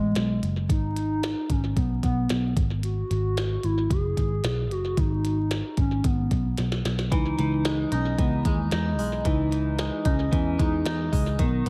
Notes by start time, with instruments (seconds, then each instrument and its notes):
Already playing: picked electric bass A1, soft synth lead G#3
0.15 picked electric bass B1, snare, closed hi-hat
0.43 picked electric bass F#1, closed hi-hat
0.69 picked electric bass G#1, soft synth lead D#4, kick, closed hi-hat
0.96 closed hi-hat
1.23 snare, closed hi-hat
1.50 picked electric bass G#1, soft synth lead C#4, kick, closed hi-hat
1.76 picked electric bass B1, soft synth lead B3, kick, closed hi-hat
2.03 picked electric bass B1, soft synth lead B3, kick, closed hi-hat
2.29 picked electric bass B1, snare, closed hi-hat
2.56 picked electric bass G#1, kick, closed hi-hat
2.83 soft synth lead F#4, closed hi-hat
3.11 picked electric bass G#1, closed hi-hat
3.37 snare, closed hi-hat
3.63 picked electric bass G#1, soft synth lead E4, closed hi-hat
3.90 picked electric bass F#1, soft synth lead G#4, kick, closed hi-hat
4.17 picked electric bass G#1, kick, closed hi-hat
4.44 picked electric bass B1, snare, closed hi-hat
4.71 picked electric bass F#1, soft synth lead F#4, closed hi-hat
4.97 picked electric bass G#1, soft synth lead D#4, kick, closed hi-hat
5.25 closed hi-hat
5.51 snare, closed hi-hat
5.77 picked electric bass G#1, soft synth lead C#4, kick, closed hi-hat
6.04 picked electric bass G#1, soft synth lead B3, kick, closed hi-hat
6.31 picked electric bass B1, kick, closed hi-hat
6.58 picked electric bass B1, snare, closed hi-hat
6.72 snare
6.85 picked electric bass B1, snare, closed hi-hat
6.99 snare
7.12 picked electric bass C#2, clean electric guitar E3, soft synth lead D#4, kick, closed hi-hat
7.38 picked electric bass C#2, clean electric guitar E3, closed hi-hat
7.65 clean electric guitar G#3, snare, closed hi-hat
7.92 picked electric bass B1, soft synth lead C#4, clean electric guitar D#4, closed hi-hat
8.18 picked electric bass C#2, clean electric guitar E3, soft synth lead B3, kick, closed hi-hat
8.45 picked electric bass D#2, clean electric guitar G#3, soft synth lead G#3, kick, closed hi-hat
8.71 picked electric bass E2, clean electric guitar D#4, snare, closed hi-hat
8.99 picked electric bass B1, clean electric guitar G#3, open hi-hat
9.25 picked electric bass C#2, clean electric guitar E3, soft synth lead D#4, kick, closed hi-hat
9.52 clean electric guitar E3, closed hi-hat
9.79 clean electric guitar G#3, snare, closed hi-hat
10.05 picked electric bass C#2, soft synth lead C#4, clean electric guitar D#4, kick, closed hi-hat
10.32 picked electric bass E2, clean electric guitar E3, soft synth lead C#4, kick, closed hi-hat
10.59 picked electric bass E2, clean electric guitar G#3, soft synth lead D#4, kick, closed hi-hat
10.86 picked electric bass E2, clean electric guitar D#4, snare, closed hi-hat
11.12 picked electric bass C#2, clean electric guitar G#3, kick, open hi-hat
11.39 picked electric bass B1, clean electric guitar D#3, soft synth lead B3, kick, closed hi-hat